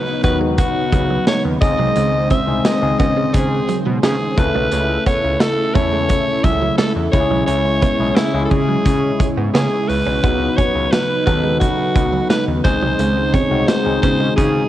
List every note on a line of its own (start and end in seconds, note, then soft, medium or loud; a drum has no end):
0.00 10.20 C#3 medium
0.00 0.23 F#3 medium
0.00 1.58 F#3 medium
0.00 0.23 B3 medium
0.00 1.60 B3 medium
0.00 0.24 D#4 medium
0.00 1.58 D#4 medium
0.00 1.60 D#4 medium
0.00 0.24 F#4 medium
0.00 0.21 B4 medium
0.00 1.58 B4 medium
0.23 0.63 D#2 loud
0.23 1.32 F#3 medium
0.23 1.32 B3 medium
0.23 0.38 B3 medium
0.23 1.32 D#4 medium
0.23 1.32 F#4 medium
0.23 0.39 B4 medium
0.23 kick medium
0.23 closed hi-hat medium
0.41 0.55 G#3 medium
0.58 1.23 F#4 loud
0.58 muted clean electric guitar stroke soft
0.58 kick loud
0.58 closed hi-hat loud
0.92 1.19 C#2 loud
0.92 1.07 F#3 medium
0.92 kick loud
0.92 closed hi-hat medium
1.10 1.24 F#3 medium
1.27 1.41 G#3 medium
1.27 1.43 C#5 medium
1.27 snare loud
1.27 closed hi-hat medium
1.45 1.58 D#2 medium
1.45 muted clean electric guitar stroke soft
1.61 1.75 C#2 loud
1.61 4.34 D#3 medium
1.61 2.30 G#3 medium
1.61 4.34 G#3 medium
1.61 4.35 G#3 medium
1.61 4.35 C4 medium
1.61 2.31 C4 medium
1.61 2.31 D#4 medium
1.61 2.31 G#4 medium
1.61 4.34 C5 medium
1.61 2.26 D#5 loud
1.61 kick loud
1.61 closed hi-hat medium
1.79 1.92 C2 medium
1.79 1.93 F#3 medium
1.96 2.35 C#2 loud
1.96 2.11 G#3 medium
1.96 closed hi-hat medium
2.14 muted clean electric guitar stroke soft
2.30 2.45 C4 medium
2.30 2.67 E5 loud
2.30 kick medium
2.30 closed hi-hat medium
2.47 2.61 C2 medium
2.47 2.74 G#3 medium
2.47 2.75 C4 medium
2.47 2.75 D#4 medium
2.47 2.75 G#4 medium
2.65 2.99 D#5 loud
2.65 muted clean electric guitar stroke soft
2.65 snare loud
2.65 closed hi-hat medium
2.82 2.95 C#2 medium
2.82 3.90 G#3 medium
2.82 3.90 C4 medium
2.82 3.91 D#4 medium
2.82 3.91 G#4 medium
2.99 3.26 C#3 loud
2.99 3.14 B3 medium
2.99 3.35 D#5 loud
2.99 kick medium
2.99 closed hi-hat medium
3.17 3.31 G#3 medium
3.34 3.60 C#3 loud
3.34 3.76 G#4 loud
3.34 muted clean electric guitar stroke soft
3.34 kick medium
3.34 closed hi-hat loud
3.69 3.83 F#3 medium
3.69 closed hi-hat medium
3.86 3.99 B2 loud
3.86 4.00 F#3 medium
4.03 4.16 C#3 loud
4.03 4.17 G#3 medium
4.03 4.40 G#4 medium
4.03 snare loud
4.03 closed hi-hat medium
4.37 4.51 C#2 loud
4.37 5.48 A3 medium
4.37 7.10 A3 medium
4.37 7.11 A3 medium
4.37 5.48 C#4 medium
4.37 5.48 E4 medium
4.37 10.20 E4 medium
4.37 7.10 E4 medium
4.37 5.48 A4 medium
4.37 5.06 B4 loud
4.37 7.10 E5 medium
4.37 muted clean electric guitar stroke soft
4.37 kick loud
4.37 closed hi-hat medium
4.55 4.68 B1 medium
4.55 4.69 A3 medium
4.72 4.98 C#2 loud
4.72 4.86 A3 medium
4.72 closed hi-hat medium
4.90 muted clean electric guitar stroke soft
5.06 5.21 B3 medium
5.06 5.42 C#5 loud
5.06 kick medium
5.06 closed hi-hat medium
5.24 5.37 C#2 medium
5.40 5.76 A4 loud
5.40 muted clean electric guitar stroke soft
5.40 snare loud
5.40 closed hi-hat medium
5.75 6.14 E2 loud
5.75 5.89 A3 medium
5.75 6.84 A3 medium
5.75 6.84 C#4 medium
5.75 6.84 E4 medium
5.75 6.84 A4 medium
5.75 6.46 C#5 loud
5.75 kick medium
5.75 closed hi-hat medium
5.93 6.07 G#3 medium
6.09 muted clean electric guitar stroke soft
6.09 kick medium
6.09 closed hi-hat medium
6.44 6.70 C#2 medium
6.44 6.59 F#3 medium
6.44 6.77 E5 loud
6.44 kick medium
6.44 closed hi-hat medium
6.62 6.76 F#3 medium
6.78 6.93 G#3 medium
6.78 6.94 A4 medium
6.78 snare loud
6.78 closed hi-hat medium
6.96 7.09 E2 medium
6.96 muted clean electric guitar stroke soft
7.12 7.26 C#2 medium
7.12 7.82 G#3 medium
7.12 10.20 G#3 medium
7.12 10.21 G#3 medium
7.12 7.82 C#4 medium
7.12 7.82 E4 medium
7.12 10.20 E4 medium
7.12 7.20 G4 medium
7.12 7.45 C#5 loud
7.12 10.20 C#5 medium
7.12 kick loud
7.12 closed hi-hat medium
7.20 7.86 G#4 medium
7.31 7.44 B1 medium
7.31 7.45 F#3 medium
7.46 7.87 C#2 loud
7.46 7.62 C#4 medium
7.46 8.17 C#5 loud
7.46 closed hi-hat medium
7.65 muted clean electric guitar stroke soft
7.82 7.96 B3 medium
7.82 kick medium
7.82 closed hi-hat medium
7.99 8.12 B1 medium
7.99 8.26 G#3 medium
7.99 8.27 C#4 medium
7.99 8.27 E4 medium
7.99 8.27 G#4 medium
8.16 8.44 E4 medium
8.16 muted clean electric guitar stroke soft
8.16 snare loud
8.16 closed hi-hat loud
8.34 8.47 C#2 medium
8.34 9.42 G#3 medium
8.34 9.42 C#4 medium
8.34 9.42 E4 medium
8.34 9.43 G#4 medium
8.45 8.52 A4 medium
8.50 8.77 C#3 medium
8.50 8.65 G#3 medium
8.50 9.27 G#4 loud
8.50 kick medium
8.50 closed hi-hat medium
8.69 8.83 F#3 medium
8.85 9.12 C#3 loud
8.85 muted clean electric guitar stroke soft
8.85 kick loud
8.85 closed hi-hat loud
9.20 9.34 G#3 medium
9.20 kick loud
9.20 closed hi-hat medium
9.37 9.50 G#2 loud
9.37 9.52 B3 medium
9.54 9.68 C#3 loud
9.54 9.69 B3 medium
9.54 9.89 G#4 medium
9.54 snare loud
9.54 closed hi-hat medium
9.88 10.02 C#2 medium
9.88 10.58 B4 loud
9.88 muted clean electric guitar stroke soft
9.88 open hi-hat medium
10.06 10.20 B1 medium
10.06 10.21 C#4 medium
10.23 10.50 C#2 loud
10.23 14.69 C#3 medium
10.23 11.04 F#3 medium
10.23 12.61 F#3 medium
10.23 11.04 B3 medium
10.23 10.38 B3 medium
10.23 12.63 B3 medium
10.23 11.05 D#4 medium
10.23 12.61 D#4 medium
10.23 12.63 D#4 medium
10.23 11.05 F#4 medium
10.23 12.61 B4 medium
10.23 kick loud
10.23 closed hi-hat medium
10.41 muted clean electric guitar stroke soft
10.57 10.72 C#4 medium
10.57 10.93 C#5 medium
10.57 kick medium
10.57 closed hi-hat medium
10.75 10.88 C#2 medium
10.91 11.25 B4 medium
10.91 muted clean electric guitar stroke soft
10.91 snare loud
10.91 closed hi-hat medium
11.26 11.66 D#2 loud
11.26 12.35 F#3 medium
11.26 12.35 B3 medium
11.26 11.41 B3 medium
11.26 12.35 D#4 medium
11.26 12.36 A4 medium
11.26 11.58 B4 loud
11.26 kick medium
11.26 closed hi-hat medium
11.44 11.58 G#3 medium
11.60 12.26 F#4 medium
11.60 muted clean electric guitar stroke soft
11.60 kick medium
11.60 closed hi-hat loud
11.96 12.22 C#2 medium
11.96 12.10 F#3 medium
11.96 kick loud
11.96 closed hi-hat medium
12.13 12.27 F#3 medium
12.29 12.45 G#3 medium
12.29 12.45 B4 medium
12.29 snare loud
12.29 closed hi-hat medium
12.48 12.61 D#2 medium
12.48 muted clean electric guitar stroke soft
12.64 12.78 C#2 loud
12.64 14.69 D#3 medium
12.64 13.34 G#3 medium
12.64 14.69 G#3 medium
12.64 13.34 C4 medium
12.64 13.34 D#4 medium
12.64 14.69 D#4 medium
12.64 14.69 G#4 medium
12.64 13.34 G#4 medium
12.64 13.35 C5 loud
12.64 kick loud
12.64 closed hi-hat medium
12.82 12.95 C2 medium
12.82 12.97 F#3 medium
12.99 13.38 C#2 loud
12.99 13.14 G#3 medium
12.99 closed hi-hat medium
13.17 muted clean electric guitar stroke soft
13.33 13.48 C4 medium
13.33 13.69 C#5 medium
13.33 kick medium
13.33 closed hi-hat medium
13.50 13.64 C2 medium
13.50 13.78 G#3 medium
13.50 13.78 C4 medium
13.50 13.78 D#4 medium
13.50 13.78 F#4 medium
13.67 14.01 C5 medium
13.67 muted clean electric guitar stroke soft
13.67 snare loud
13.67 closed hi-hat medium
13.85 13.99 C#2 medium
13.85 14.69 G#3 medium
13.85 14.69 C4 medium
13.85 14.69 D#4 medium
13.85 14.69 G#4 medium
14.02 14.29 C#3 loud
14.02 14.17 B3 medium
14.02 14.34 C5 medium
14.02 kick medium
14.02 closed hi-hat medium
14.20 14.34 G#3 medium
14.36 14.63 C#3 loud
14.36 14.69 G#4 medium
14.36 muted clean electric guitar stroke soft
14.36 kick medium
14.36 closed hi-hat loud